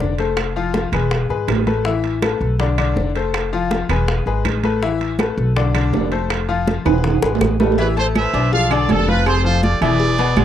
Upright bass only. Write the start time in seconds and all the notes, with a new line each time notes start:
0.00 F1
0.92 E1
1.29 G#1
1.48 A1
2.41 B1
2.96 F1
3.89 E1
4.26 G#1
4.45 A1
5.38 B1
5.93 F1
6.85 E1
7.22 G#1
7.41 A1
8.33 B1
8.89 F1
9.81 E1
10.37 A1